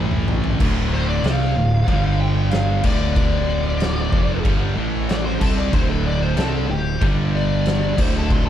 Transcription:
0.00 0.56 A1 medium
0.00 0.59 A2 medium
0.00 0.60 E3 medium
0.00 0.60 A3 loud
0.11 mid tom medium
0.28 floor tom loud
0.44 floor tom loud
0.60 1.20 D1 loud
0.60 1.24 D2 loud
0.60 1.24 A2 loud
0.60 1.24 D3 loud
0.60 kick loud
0.60 crash loud
0.60 crash medium
0.94 1.08 C5 medium
1.09 1.24 D5 loud
1.24 1.54 C2 medium
1.24 1.55 C3 medium
1.24 1.56 G3 medium
1.24 1.56 C4 loud
1.24 2.18 F5 loud
1.24 snare loud
1.24 crash medium
1.56 1.86 D1 medium
1.56 1.82 D2 medium
1.56 1.82 A2 medium
1.88 2.80 G1 loud
1.88 2.83 G2 medium
1.88 2.83 D3 medium
1.88 2.84 G3 loud
1.88 kick loud
1.88 crash medium
2.20 2.35 G5 medium
2.36 2.50 G5 medium
2.51 2.82 F5 medium
2.51 snare loud
2.51 crash medium
2.84 4.09 D1 medium
2.84 4.12 D2 loud
2.84 4.12 A2 loud
2.84 4.12 D3 loud
2.84 3.15 D5 loud
2.84 kick loud
2.84 crash loud
3.16 4.41 D5 loud
3.16 kick loud
3.16 crash medium
3.80 snare loud
3.80 crash medium
4.12 4.42 F1 loud
4.12 4.44 F2 medium
4.12 4.44 C3 loud
4.12 4.44 F3 loud
4.12 kick loud
4.44 4.75 G1 medium
4.44 4.76 G2 medium
4.44 4.76 D3 loud
4.44 4.76 G3 loud
4.44 kick loud
4.44 crash medium
4.76 5.37 A1 loud
4.76 5.40 A2 loud
4.76 5.40 E3 loud
4.76 5.41 A3 loud
5.09 5.24 D5 loud
5.09 snare loud
5.09 crash medium
5.25 5.40 C5 medium
5.40 5.71 C2 medium
5.40 5.72 C3 medium
5.40 5.72 G3 loud
5.40 5.72 C4 loud
5.40 5.56 A4 medium
5.40 kick loud
5.40 crash loud
5.57 5.73 D5 medium
5.72 6.33 D1 loud
5.72 6.36 D2 medium
5.72 6.36 A2 loud
5.72 6.36 D3 loud
5.72 5.89 C5 medium
5.72 kick loud
5.72 crash medium
5.89 6.05 A4 loud
6.06 6.22 D5 medium
6.22 6.38 C5 medium
6.37 6.67 C2 medium
6.37 6.68 C3 medium
6.37 6.69 G3 medium
6.37 6.69 C4 medium
6.37 6.69 A4 loud
6.37 snare loud
6.37 crash medium
6.69 7.00 D1 medium
6.69 6.95 D2 medium
6.69 6.95 A2 medium
6.69 7.01 G4 loud
7.01 7.94 G1 loud
7.01 7.97 G2 medium
7.01 7.97 D3 loud
7.01 7.97 G3 loud
7.01 kick loud
7.01 crash medium
7.35 7.97 D5 loud
7.66 snare loud
7.66 crash medium
7.98 8.49 D1 medium
7.98 8.49 D2 medium
7.98 8.49 A2 loud
7.98 8.49 D3 loud
7.98 8.14 C5 medium
7.98 kick loud
7.98 crash loud
8.15 8.32 A4 medium
8.30 8.46 C5 loud
8.30 kick loud
8.30 crash medium

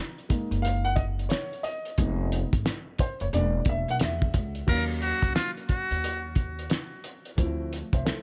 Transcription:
0.00 0.14 A#5 loud
0.18 closed hi-hat soft
0.29 1.27 G#3 medium
0.29 1.27 A#3 medium
0.29 1.27 D#4 medium
0.29 kick medium
0.29 closed hi-hat medium
0.51 1.27 F#1 medium
0.51 closed hi-hat medium
0.62 0.85 F5 loud
0.62 closed hi-hat medium
0.85 0.96 F#5 loud
0.85 closed hi-hat soft
0.96 1.03 D#5 medium
0.96 kick loud
0.96 closed hi-hat medium
1.19 closed hi-hat soft
1.29 1.65 C#5 medium
1.29 snare loud
1.29 closed hi-hat loud
1.53 closed hi-hat soft
1.63 2.27 D#5 medium
1.63 closed hi-hat medium
1.85 closed hi-hat medium
1.98 2.41 F1 loud
1.98 2.47 G#3 medium
1.98 2.47 B3 medium
1.98 2.48 D#4 medium
1.98 kick loud
1.98 closed hi-hat loud
2.32 closed hi-hat medium
2.53 2.63 G#1 medium
2.53 kick loud
2.53 closed hi-hat medium
2.66 snare loud
2.66 closed hi-hat medium
2.98 3.22 C5 medium
2.98 kick medium
2.98 closed hi-hat medium
3.20 3.31 F1 medium
3.20 3.26 C#5 medium
3.20 closed hi-hat medium
3.33 3.59 E1 loud
3.33 4.30 G#3 medium
3.33 4.31 A#3 medium
3.33 4.31 D4 medium
3.33 3.68 D5 medium
3.33 closed hi-hat medium
3.65 3.83 E1 medium
3.65 kick medium
3.65 closed hi-hat medium
3.69 3.88 E5 medium
3.88 3.98 B1 medium
3.88 3.95 F#5 loud
3.88 closed hi-hat soft
4.00 4.27 E2 loud
4.00 4.65 E5 medium
4.00 snare loud
4.00 closed hi-hat medium
4.22 kick medium
4.34 4.61 C#2 medium
4.34 kick medium
4.34 closed hi-hat medium
4.55 closed hi-hat medium
4.67 5.11 D#2 loud
4.67 7.33 F#3 medium
4.67 7.34 A#3 medium
4.67 7.34 C#4 medium
4.67 4.84 A#4 loud
4.67 kick loud
4.67 crash medium
4.71 7.35 F5 medium
5.02 5.34 F#4 medium
5.02 closed hi-hat medium
5.22 5.32 C#2 medium
5.22 kick medium
5.22 closed hi-hat medium
5.35 5.51 F4 medium
5.35 snare loud
5.35 closed hi-hat medium
5.57 closed hi-hat soft
5.69 6.32 F#4 medium
5.69 kick medium
5.69 closed hi-hat medium
5.91 6.67 D#2 medium
5.91 closed hi-hat soft
6.04 closed hi-hat medium
6.35 kick medium
6.35 closed hi-hat medium
6.59 closed hi-hat soft
6.70 snare loud
6.70 closed hi-hat medium
7.04 closed hi-hat medium
7.25 closed hi-hat medium
7.37 7.81 D2 loud
7.37 8.22 F3 medium
7.37 8.22 A3 medium
7.37 7.72 C4 medium
7.37 7.72 E4 medium
7.37 kick loud
7.37 closed hi-hat medium
7.73 closed hi-hat medium
7.93 8.03 C2 medium
7.93 8.04 C5 medium
7.93 8.05 E5 medium
7.93 kick medium
7.93 closed hi-hat medium
8.05 8.22 A4 medium
8.05 8.22 C5 medium
8.05 snare loud
8.05 closed hi-hat medium

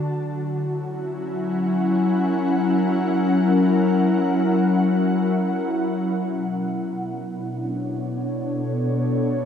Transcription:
0.00 6.13 F#3 medium
0.00 1.07 F#4 medium
0.15 7.90 E4 medium
0.44 6.13 C#4 medium
0.53 7.90 F#5 medium
1.50 6.13 A#4 medium
6.15 9.45 B2 medium
6.38 9.45 B3 medium
6.84 9.45 D4 medium
7.06 9.45 C#5 medium
7.75 9.45 A4 medium

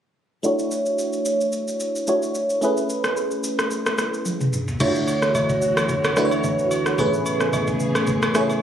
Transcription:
0.43 2.04 A3 medium
0.43 2.04 D4 medium
0.43 2.05 E4 medium
0.43 2.05 F#4 medium
0.43 2.05 C#5 medium
0.43 shaker medium
0.59 shaker medium
0.71 shaker medium
0.86 shaker soft
0.98 shaker medium
1.13 shaker soft
1.25 shaker medium
1.41 shaker medium
1.52 shaker medium
1.68 shaker medium
1.80 shaker medium
1.96 shaker soft
2.07 2.60 A3 medium
2.07 2.62 D4 soft
2.07 2.62 E4 soft
2.07 2.63 F#4 soft
2.07 2.63 C#5 medium
2.07 shaker medium
2.22 shaker medium
2.35 shaker medium
2.50 shaker medium
2.61 4.49 A3 medium
2.61 4.49 C#4 medium
2.61 4.50 E4 medium
2.61 4.50 G#4 medium
2.61 4.50 B4 medium
2.61 shaker medium
2.77 shaker medium
2.90 shaker medium
3.04 cross-stick medium
3.04 shaker soft
3.17 shaker medium
3.31 shaker soft
3.44 shaker medium
3.59 cross-stick medium
3.59 shaker medium
3.71 shaker medium
3.86 cross-stick medium
3.86 shaker soft
3.98 cross-stick medium
3.98 shaker medium
4.14 shaker soft
4.25 high tom medium
4.25 shaker medium
4.41 mid tom medium
4.41 shaker medium
4.53 mid tom medium
4.53 shaker medium
4.68 floor tom medium
4.68 shaker medium
4.80 6.94 D2 medium
4.80 6.96 E3 medium
4.80 5.68 A3 medium
4.80 5.68 D4 medium
4.80 5.68 E4 medium
4.80 4.88 F4 medium
4.80 6.96 F#4 medium
4.80 6.96 C#5 medium
4.80 5.69 C#5 medium
4.80 kick loud
4.80 crash medium
4.80 high agogo medium
4.80 shaker medium
4.88 5.72 F#4 medium
4.95 shaker medium
5.08 high agogo medium
5.08 shaker loud
5.22 cross-stick medium
5.22 shaker medium
5.35 kick medium
5.35 high agogo medium
5.35 low woodblock medium
5.35 shaker medium
5.49 kick medium
5.49 shaker medium
5.62 shaker loud
5.77 cross-stick medium
5.77 high agogo medium
5.77 shaker medium
5.89 kick loud
5.89 shaker medium
6.04 cross-stick loud
6.04 high agogo medium
6.04 shaker medium
6.16 6.83 A3 medium
6.16 6.83 D4 medium
6.16 6.84 E4 medium
6.16 6.84 F#4 medium
6.16 6.25 B4 medium
6.16 cross-stick medium
6.16 shaker medium
6.25 6.87 C#5 medium
6.31 high agogo medium
6.31 shaker soft
6.44 kick medium
6.44 low woodblock medium
6.44 shaker medium
6.59 shaker medium
6.71 high agogo medium
6.71 shaker medium
6.86 cross-stick medium
6.86 shaker medium
6.98 8.62 A1 medium
6.98 8.62 C#3 medium
6.98 7.86 A3 medium
6.98 8.62 B3 medium
6.98 7.06 B3 medium
6.98 7.87 E4 medium
6.98 8.62 G#4 medium
6.98 7.87 G#4 medium
6.98 7.87 B4 medium
6.98 kick loud
6.98 high agogo medium
6.98 shaker medium
7.05 7.90 C#4 medium
7.13 shaker medium
7.26 high agogo medium
7.26 shaker loud
7.40 cross-stick medium
7.40 shaker soft
7.53 kick medium
7.53 high agogo medium
7.53 low woodblock medium
7.53 shaker medium
7.67 kick medium
7.67 shaker medium
7.80 shaker medium
7.95 cross-stick medium
7.95 high agogo medium
7.95 shaker medium
8.07 kick loud
8.07 shaker medium
8.22 cross-stick loud
8.22 high agogo medium
8.22 shaker medium
8.35 8.62 A3 medium
8.35 8.62 C#4 medium
8.35 8.62 E4 medium
8.35 8.62 G#4 medium
8.35 8.62 C#5 medium
8.35 cross-stick loud
8.35 shaker medium
8.50 high agogo medium
8.50 shaker medium

